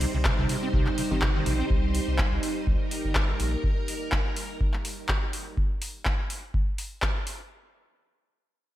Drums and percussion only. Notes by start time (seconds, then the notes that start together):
0.01 open hi-hat
0.25 kick, clap
0.49 open hi-hat
0.74 kick
0.86 clap
0.98 open hi-hat
1.22 kick, clap
1.46 open hi-hat
1.70 kick
1.95 open hi-hat
2.18 kick, clap
2.43 open hi-hat
2.67 kick
2.91 open hi-hat
3.15 kick, clap
3.40 open hi-hat
3.64 kick
3.88 open hi-hat
4.12 kick, clap
4.36 open hi-hat
4.61 kick
4.74 clap
4.85 open hi-hat
5.09 kick, clap
5.33 open hi-hat
5.57 kick
5.82 open hi-hat
6.05 kick, clap
6.30 open hi-hat
6.54 kick
6.78 open hi-hat
7.02 kick, clap
7.27 open hi-hat